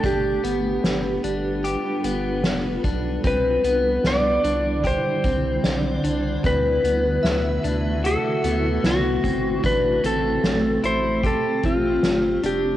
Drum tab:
HH |xxxxxxxx|xxxxxxxx|xxxxxxxx|xxxxxxxx|
SD |--o---o-|--o---o-|--o---o-|--o---o-|
BD |o------o|o---oo--|o------o|o---oo--|